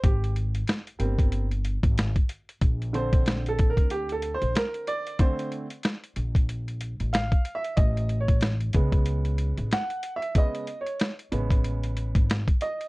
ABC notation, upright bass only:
X:1
M:4/4
L:1/16
Q:"Swing 16ths" 1/4=93
K:Bbdor
V:1 name="Upright bass" clef=bass
A,,,4 z2 G,,,4- G,,, A,,,2 z3 | B,,,6- B,,, =D,,4 B,,, z4 | z6 B,,,4- B,,, =A,,,2 z3 | =A,,,6 ^C,,4- C,, A,,, z4 |
z6 =A,,,4- A,,, ^G,,,2 z3 |]